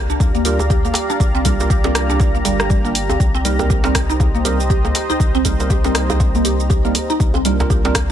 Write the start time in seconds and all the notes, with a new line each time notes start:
Already playing: C2 G4 D5 F5 A#5
0.10 D4, shaker
0.20 D2, kick, djembe tone, shaker
0.35 A#3, shaker
0.45 G3 A#3 D4 F4 G4 A#4, open hi-hat, shaker
0.59 djembe tone, shaker
0.70 G4, kick, shaker
0.85 A#3, djembe tone, shaker
0.94 open hi-hat, djembe slap, shaker
1.10 D4, shaker
1.20 C2, kick, djembe tone, shaker
1.35 C4, shaker
1.45 G3 A#3 D4 F4 A#4, kick, open hi-hat, djembe tone, shaker
1.60 G3 A#3 D4 F4 A#4, djembe slap, shaker
1.70 G4, kick, shaker
1.84 G3 A#3 C4 D4 F4 A#4, djembe slap, djembe tone, shaker
1.95 cross-stick, open hi-hat, shaker
2.10 D4, djembe tone, shaker
2.20 kick, djembe slap, shaker
2.35 A#3, shaker
2.45 G1 G3, open hi-hat, djembe tone, shaker
2.60 cross-stick, shaker
2.70 G3, kick, djembe tone, shaker
2.85 G3 A#3 D4 F4 A#4, shaker
2.95 open hi-hat, shaker
3.09 C4, djembe tone, shaker
3.20 C2 C5 D#5, kick, djembe tone, shaker
3.35 C4, shaker
3.45 G3 A#3 C4 D#4 A#4, open hi-hat, shaker
3.59 G3 A#3 C4 D#4 A#4, djembe slap, djembe tone, shaker
3.70 G4, kick, shaker
3.84 G3 A#3 C4 D#4 A#4, djembe slap, djembe tone, shaker
3.95 kick, cross-stick, open hi-hat, shaker
4.10 D#4, shaker
4.20 kick, djembe tone, shaker
4.35 A#3, shaker
4.45 G3 A#3 C4 D#4 G4 A#4, open hi-hat, djembe tone, shaker
4.60 shaker
4.70 G4, kick, shaker
4.85 A#3, djembe tone, shaker
4.95 open hi-hat, djembe slap, shaker
5.10 D#4, djembe tone, shaker
5.20 C2, kick, shaker
5.35 C4, shaker
5.45 G3 A#3 C4 D#4 A#4, kick, open hi-hat, djembe tone, shaker
5.60 G3 A#3 C4 D#4 A#4, djembe slap, shaker
5.70 G4, kick, djembe tone, shaker
5.84 G3 A#3 C4 D#4 A#4, djembe slap, shaker
5.95 cross-stick, open hi-hat, shaker
6.10 D#4, djembe tone, shaker
6.20 kick, djembe slap, shaker
6.35 A#3, djembe tone, shaker
6.45 G4, open hi-hat, shaker
6.60 shaker
6.70 G4, kick, djembe tone, shaker
6.85 G3 A#3 C4 D#4 A#4, shaker
6.95 open hi-hat, djembe tone, shaker
7.10 D#4, shaker
7.20 C2 G4 D5 F5 A#5, kick, shaker
7.34 C4, djembe tone, shaker
7.45 G3 A#3 D4 F4 A#4, open hi-hat, shaker
7.60 G3 A#3 D4 F4 A#4, djembe slap, djembe tone, shaker
7.70 G4, kick, shaker
7.85 G3 A#3 C4 D4 F4 A#4, djembe slap, shaker
7.95 kick, cross-stick, open hi-hat, djembe tone, shaker